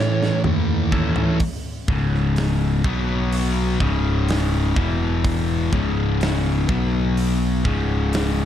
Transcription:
Already playing: picked electric bass A2, overdriven electric guitar A2 E3 A3 C#4 E4 A4, distorted electric guitar E3 A3, lead electric guitar C#5
0.00 distorted electric guitar A2
0.23 snare
0.44 picked electric bass D#2, distorted electric guitar A2 E3 A3, mid tom
0.92 overdriven electric guitar A2 E3 A3 C#4 E4 A4, kick
1.16 floor tom
1.40 kick, open hi-hat
1.88 picked electric bass C#1, overdriven electric guitar C#2 G#2 C#3, kick
2.14 snare
2.36 snare, open hi-hat
2.84 picked electric bass B1, overdriven electric guitar B2 F#3 B3, kick
3.33 open hi-hat
3.80 picked electric bass C#1, overdriven electric guitar C#2 G#2 C#3, kick
4.29 snare, open hi-hat
4.76 picked electric bass E1, overdriven electric guitar E2 B2 E3, kick
5.25 kick, open hi-hat
5.72 picked electric bass C#1, overdriven electric guitar C#2 G#2 C#3, kick
6.21 snare, open hi-hat
6.68 picked electric bass B1, overdriven electric guitar B2 F#3 B3, kick
7.17 open hi-hat
7.65 picked electric bass C#1, overdriven electric guitar C#2 G#2 C#3, kick
8.13 snare, open hi-hat

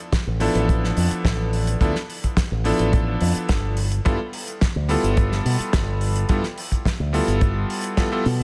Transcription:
0.12 kick, snare, closed hi-hat
0.27 fingered electric bass A1
0.40 electric grand piano F3 B3 D4 E4 A4, open hi-hat
0.55 fingered electric bass A1, closed hi-hat
0.69 kick, closed hi-hat
0.84 snare
0.97 fingered electric bass F2, open hi-hat
1.11 muted fingered electric bass stroke, closed hi-hat
1.25 fingered electric bass A1, kick, snare, closed hi-hat
1.53 open hi-hat
1.67 closed hi-hat
1.81 fingered electric bass D2, electric grand piano F3 B3 D4 E4 A4, kick, closed hi-hat
1.95 snare
2.10 open hi-hat
2.24 kick, closed hi-hat
2.37 kick, snare, closed hi-hat
2.51 fingered electric bass A1
2.64 electric grand piano F3 B3 D4 E4 A4, open hi-hat
2.79 fingered electric bass A1, closed hi-hat
2.93 kick, closed hi-hat
3.21 fingered electric bass F2, open hi-hat
3.35 muted fingered electric bass stroke, closed hi-hat
3.49 fingered electric bass G1, kick, snare, closed hi-hat
3.77 open hi-hat
3.92 closed hi-hat
4.05 fingered electric bass G2, electric grand piano G3 B3 E4 F4 A4, kick, closed hi-hat
4.33 open hi-hat
4.48 closed hi-hat
4.61 kick, snare, closed hi-hat
4.76 fingered electric bass D2
4.89 electric grand piano G3 B3 E4 F4 A4, open hi-hat
5.04 fingered electric bass G1, closed hi-hat
5.17 kick, closed hi-hat
5.32 snare
5.45 fingered electric bass B2, open hi-hat
5.60 muted fingered electric bass stroke, closed hi-hat
5.73 fingered electric bass G1, kick, snare, closed hi-hat
6.01 open hi-hat
6.16 closed hi-hat
6.29 fingered electric bass G2, electric grand piano G3 B3 E4 F4 A4, kick, closed hi-hat
6.43 snare
6.58 open hi-hat
6.72 kick, closed hi-hat
6.85 kick, snare, closed hi-hat
7.00 fingered electric bass D2
7.13 electric grand piano G3 B3 E4 F4 A4, open hi-hat
7.28 fingered electric bass G1, closed hi-hat
7.41 kick, closed hi-hat
7.70 open hi-hat
7.84 closed hi-hat
7.97 electric grand piano G3 B3 E4 F4 A4, kick, snare, closed hi-hat
8.12 electric grand piano G3 B3 E4 F4 A4
8.26 fingered electric bass B2, open hi-hat

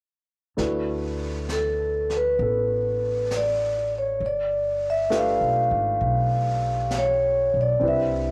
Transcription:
0.57 upright bass D2, grand piano A3 D4 E4 F#4 B4, brush sweep, snare
1.49 vibraphone A4, snare, hi-hat pedal
2.10 snare
2.17 vibraphone B4
2.39 upright bass A1, grand piano B3 A4, brush sweep
3.31 snare, hi-hat pedal
3.37 vibraphone D5
3.99 vibraphone C#5
4.20 upright bass G1, brush sweep
4.26 vibraphone D5
4.90 vibraphone E5
5.10 grand piano A3 D4 F4 G4 B4, snare, hi-hat pedal
5.17 vibraphone F5
5.41 upright bass B1
5.71 upright bass G#1
6.01 upright bass B1, brush sweep
6.91 snare, hi-hat pedal
6.98 vibraphone C#5
7.54 upright bass B1
7.61 vibraphone D5
7.79 upright bass C2, grand piano C4 D4 E4 G4, brush sweep
7.85 grand piano B4, vibraphone E5

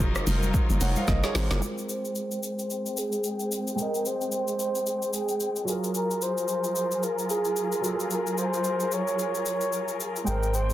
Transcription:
Already playing: log drum bass F1, string section F#3 D#4 F4 A#4, grand piano F#3 F4 G#4 A#4 C5 C#5
0.00 kick
0.15 cross-stick, shaker
0.27 log drum bass F1, open hi-hat, high conga, low conga, shaker
0.43 high conga, shaker
0.54 kick, shaker
0.70 log drum bass F#1, high conga, shaker
0.81 log drum bass F1, grand piano C#5 F#5, open hi-hat, shaker
0.96 grand piano C5 F5, high conga, shaker
1.08 log drum bass F#1, grand piano A#4 D#5, kick, snare, high conga, low conga, shaker
1.23 grand piano G#4 C#5, snare, shaker
1.35 log drum bass G#1, grand piano F#4, snare, open hi-hat, high conga, low conga, shaker
1.51 log drum bass F#1, grand piano F4 A#4, snare, shaker
1.59 grand piano G#3 G5, string section G#3 C4 G5, soft synth lead A#4, shaker
1.66 grand piano C5
1.78 shaker
1.89 soft synth lead C5, shaker
2.05 shaker
2.16 shaker
2.31 shaker
2.43 soft synth lead C5, shaker
2.59 shaker
2.70 shaker
2.86 shaker
2.97 soft synth lead G#4, shaker
3.12 shaker
3.24 shaker
3.40 shaker
3.52 shaker
3.67 shaker
3.75 grand piano G#3 G5, soft synth lead A#4, shaker
3.80 grand piano A#4 D#5
3.94 shaker
4.06 soft synth lead C5, shaker
4.21 shaker
4.32 shaker
4.48 shaker
4.59 soft synth lead C5, shaker
4.75 shaker
4.87 shaker
5.02 shaker
5.13 soft synth lead G#4, shaker
5.29 shaker
5.40 shaker
5.56 shaker
5.65 grand piano F#3 F4, string section F#3 F4 G#4 A#4, shaker
5.69 grand piano G#4 A#4
5.84 shaker
5.95 soft synth lead A#4, shaker
6.11 shaker
6.22 soft synth lead C5, shaker
6.38 shaker
6.48 shaker
6.64 shaker
6.76 soft synth lead C5, shaker
6.91 shaker
7.03 soft synth lead A#4, shaker
7.19 shaker
7.30 soft synth lead G#4, shaker
7.45 shaker
7.56 shaker
7.72 shaker
7.81 grand piano F#3 F4, shaker
7.86 grand piano G#4 A4
7.94 grand piano A#4
8.00 shaker
8.11 soft synth lead A#4, shaker
8.27 shaker
8.38 soft synth lead C5, shaker
8.54 shaker
8.64 shaker
8.80 shaker
8.92 soft synth lead C#5, shaker
9.08 shaker
9.19 shaker
9.35 shaker
9.46 soft synth lead C#5, shaker
9.61 shaker
9.73 shaker
9.88 shaker
10.00 shaker
10.16 shaker
10.24 sub bass G#1, grand piano G#3 G5, string section G#3 C4 G5, soft synth lead A#4, shaker
10.29 grand piano A#4 C5
10.43 shaker
10.54 soft synth lead C5, shaker
10.70 shaker

